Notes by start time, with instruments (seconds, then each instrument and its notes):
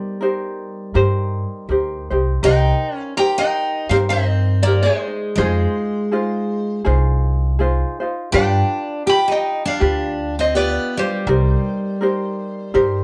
Already playing: steel-string acoustic guitar G3, ukulele D#4 G4 A#4 C5, resonator guitar played with a steel bar G4 C5
0.21 ukulele D#4 G4 A#4 C5
0.94 upright bass G2, ukulele D#4 G4 A#4 C5
1.69 upright bass D2, ukulele D#4 G4 A#4 C5
2.10 upright bass C2, ukulele D#4 G4 C5
2.43 upright bass C2, ukulele D#4 G4 A#4 C5, steel-string acoustic guitar D#4, resonator guitar played with a steel bar D#5 G5
2.95 steel-string acoustic guitar C#4
3.00 resonator guitar played with a steel bar F5
3.17 ukulele D#4 G4 A#4 C5, steel-string acoustic guitar G4, resonator guitar played with a steel bar G5 A#5
3.38 steel-string acoustic guitar D#4, resonator guitar played with a steel bar D#5 G5
3.89 upright bass G2, steel-string acoustic guitar C4, ukulele D#4 G4 A#4 C5, resonator guitar played with a steel bar C5 F5
4.09 steel-string acoustic guitar C4, resonator guitar played with a steel bar C5 D#5
4.63 steel-string acoustic guitar A#3, ukulele D#4 G4 A#4 C5, resonator guitar played with a steel bar A#4 D5
4.82 steel-string acoustic guitar G#3, resonator guitar played with a steel bar G#4 C5
5.06 ukulele D#4 C5
5.36 upright bass F2, steel-string acoustic guitar G#3, ukulele D#4 F4 G#4 C5, resonator guitar played with a steel bar C5
5.41 resonator guitar played with a steel bar G#4
6.12 ukulele D#4 F4 G#4 C5
6.85 upright bass C2, ukulele D#4 F4 G#4 C5
7.59 ukulele D#4 F4 G#4 C5
8.00 ukulele D#4 F4 C5
8.32 upright bass G2, steel-string acoustic guitar D4, ukulele D4 F4 G4 B4, resonator guitar played with a steel bar D5 G5
9.06 ukulele F4 G4 B4, steel-string acoustic guitar G4, resonator guitar played with a steel bar G5 B5
9.28 steel-string acoustic guitar D#4, resonator guitar played with a steel bar D#5
9.32 resonator guitar played with a steel bar G5
9.65 steel-string acoustic guitar D4, resonator guitar played with a steel bar D5 F5
9.80 upright bass D2, ukulele D4 F4 G4 B4
10.39 steel-string acoustic guitar C4, resonator guitar played with a steel bar C5 D#5
10.54 steel-string acoustic guitar B3, ukulele D4 F4 G4 B4, resonator guitar played with a steel bar B4 D5
10.97 steel-string acoustic guitar G3, ukulele D4 F4, resonator guitar played with a steel bar G4 C5
11.27 upright bass C2, ukulele D#4 G4 A#4 C5
12.01 ukulele D#4 G4 A#4 C5
12.74 upright bass G2, ukulele D#4 G4 A#4 C5